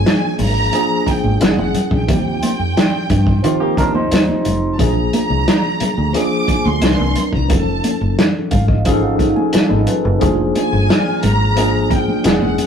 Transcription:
Already playing: F3 A#3 D4 G#4 G#5
0.06 snare, closed hi-hat, muted conga
0.39 G#1 A#5, open hi-hat, muted conga, low conga
0.72 F3 A#3 D4 G#4, closed hi-hat
1.07 G5, muted fingered electric bass stroke, kick, closed hi-hat
1.24 G#1, high conga
1.40 E1 F#3 C#4 E4 G4 F#5, snare, closed hi-hat, muted conga
1.48 G#4
1.57 E1, high conga
1.74 closed hi-hat, muted conga, low conga
1.91 A#1 G5, kick
2.07 D#2 F3 C4 D#4 G4, kick, closed hi-hat, muted conga, low conga
2.42 C6, closed hi-hat, muted conga, high conga
2.59 F2
2.77 snare, closed hi-hat
3.10 G2, kick, closed hi-hat, low conga
3.27 kick
3.42 D#3 F3 C4 D#4 F4 G4, closed hi-hat
3.60 A#3 G4
3.77 D#2 D4 A#4, kick, closed hi-hat
3.95 D#4 C5, high conga
4.12 D#2, snare, closed hi-hat
4.28 high conga
4.45 F1, closed hi-hat, low conga
4.73 A5
4.78 A#1 F3 A#3 D4 G#4 A#5, kick, closed hi-hat, muted conga, low conga
5.13 closed hi-hat, high conga
5.30 C2
5.48 snare, closed hi-hat, muted conga
5.80 muted fingered electric bass stroke, closed hi-hat, muted conga, low conga
5.98 D2
6.13 F3 A#3 D4 G#4 D6, closed hi-hat
6.48 G#5, muted fingered electric bass stroke, kick, closed hi-hat
6.65 D2 C6, high conga
6.81 C2 E3 C4 D4 A#4, snare, closed hi-hat, muted conga
6.99 C2, high conga
7.16 closed hi-hat, muted conga, low conga
7.33 C2 A#5, kick
7.48 F1 F3 C#4 D#4 G#4 A5, kick, closed hi-hat, muted conga, low conga
7.57 A4
7.84 closed hi-hat, muted conga, high conga
8.01 F#1
8.19 snare, closed hi-hat, muted conga
8.51 G#1 F5, kick, closed hi-hat, muted conga, low conga
8.68 D#5, kick
8.85 F3 C#4 D#4 G#4 F5, kick, closed hi-hat, muted conga
8.93 A4
9.03 F#5
9.19 kick, closed hi-hat, muted conga
9.36 G#5, high conga
9.53 A5, muted fingered electric bass stroke, snare, closed hi-hat
9.70 G#1 A4 D#5 B5, high conga
9.87 F4 B4, closed hi-hat, low conga
10.04 F#1 D#4 A4
10.19 F1 F3 A#3 D4 G#4, kick, closed hi-hat, muted conga, low conga
10.55 G#5, closed hi-hat, muted conga, high conga
10.73 G1
10.89 F6, snare, closed hi-hat
11.23 G#1 A#5, closed hi-hat, low conga
11.55 F3 A#3 D4 G#4, closed hi-hat, muted conga
11.91 G5, kick, closed hi-hat, muted conga
12.08 high conga
12.23 E1 F#3 C#4 E4 G#4 F#5, snare, closed hi-hat
12.42 E1, high conga
12.58 closed hi-hat, muted conga, low conga

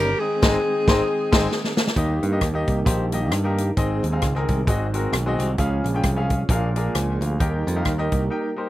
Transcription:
Already playing: G1 D#3 A#3 C#4 G4 A#4
0.15 D#3 G#3 C4 D#4 G#4
0.19 G#4
0.42 G#1 G#3 C4 D#4, kick, snare, crash
0.87 G#1 G#3 C4 D#4 C5, kick, snare
1.32 G#1 G#3 C4 D#4 C5 G#5, kick, snare, crash
1.52 snare
1.64 snare
1.77 snare
1.87 snare
1.96 D#2 D#3 G3 A#3 D#4 G4 D#5, kick, closed hi-hat
2.23 G2, closed hi-hat
2.31 A#3 D#4 G4 D#5
2.41 D#2, kick, cross-stick, closed hi-hat
2.54 A#3 D#4 G4 D#5
2.67 C2, kick, closed hi-hat
2.85 A#1 A#3 D#4 G4 C5, kick, closed hi-hat
3.12 A#3 D#4 G4 D#5, closed hi-hat
3.32 G2, cross-stick, closed hi-hat
3.44 A#3 D#4 G4 A#4
3.58 closed hi-hat
3.77 G#1 G#2 D#3 G#3 C4 D#4 G#4 D#5, kick, closed hi-hat
4.03 D#2, closed hi-hat
4.12 C4 D#4 G#4 F5
4.22 C#2, kick, cross-stick, closed hi-hat
4.35 C4 D#4 G#4 A#4, cross-stick
4.48 C2, kick, closed hi-hat
4.67 G#1 G#2 D#3 F#3 G#3 C4 D#4 F4 F#4 G#4 D#5, kick, closed hi-hat
4.73 F#4
4.94 C4 F#4 G#4 A#4, closed hi-hat
5.13 B1, cross-stick, closed hi-hat
5.26 C4 F#4 G#4 D#5
5.39 C2, cross-stick, closed hi-hat
5.57 C#2 C#3 F3 G#3 C#4 F4 G#4 F5, kick, closed hi-hat
5.84 A#1, closed hi-hat
5.94 C#4 F4 G#4 G5
6.03 C2 C4 G#4, kick, cross-stick, closed hi-hat
6.16 C#4 F4 G#4 F5
6.30 F4 C#5, kick, closed hi-hat
6.49 A#1 A#2 F3 G#3 A#3 D4 G#4 A#4 F5, kick, closed hi-hat
6.76 D4 G#4 A#4 F5, closed hi-hat
6.95 C#2 C5 G#5, cross-stick, closed hi-hat
7.21 D2 G#4 F5, closed hi-hat
7.39 D#2 D#3 G3 A#3 D#4 G4 A#4 G5, kick, closed hi-hat
7.67 F2, closed hi-hat
7.75 D#4 G4 A#4 F5
7.85 D#2, kick, cross-stick, closed hi-hat
7.98 D#4 G4 A#4 D#5, cross-stick
8.12 C2, kick, closed hi-hat
8.30 D#4 G4 A#4 G5
8.56 A#3 D#4 G4 A#4 C5

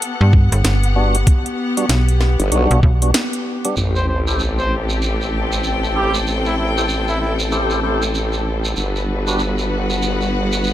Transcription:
Already playing: B3 G4 A4 F#5
0.02 closed hi-hat
0.21 G2
0.33 kick
0.52 G1, cross-stick, closed hi-hat
0.64 G1, snare, closed hi-hat
0.83 closed hi-hat
0.96 G3 B3 D4 F#4
1.15 closed hi-hat
1.27 kick, closed hi-hat
1.46 closed hi-hat
1.77 G3 B3 D4 F#4, closed hi-hat
1.89 B1, snare, closed hi-hat
2.09 closed hi-hat
2.21 cross-stick, snare
2.40 G1, closed hi-hat
2.52 B1 G3 B3 D4 F#4, closed hi-hat
2.71 B1, closed hi-hat
2.83 B1, kick
3.02 G3 B3 D4 F#4, closed hi-hat
3.14 snare, closed hi-hat
3.33 closed hi-hat
3.65 G3 B3 D4 G4, closed hi-hat
3.77 A1 A3 C4 G4, sub drop, shekere
3.96 A4 C5, shekere
4.08 C5
4.27 E4 G4 A4 C5, shekere
4.39 shekere
4.59 C5, shekere
4.72 G5
4.89 shekere
5.02 shekere
5.21 shekere
5.52 shekere
5.64 shekere
5.84 shekere
5.96 E4 G4 A4 C5
6.14 shekere
6.27 A4, shekere
6.46 E4, shekere
6.58 E4
6.77 E4 G4 A4 C5, shekere
6.89 shekere
7.08 E4, shekere
7.21 E4
7.39 shekere
7.52 E4 G4 A4 C5, shekere
7.70 shekere
7.83 E4 G4 A4 C5
8.02 shekere
8.15 shekere
8.33 shekere
8.64 shekere
8.76 G1 G3 B3 F#4 B4, shekere
8.96 shekere
9.07 G3
9.27 D4 F#4 G4 B4, shekere
9.39 F#5, shekere
9.59 shekere
9.90 shekere
10.02 shekere
10.21 shekere
10.52 shekere
10.64 shekere

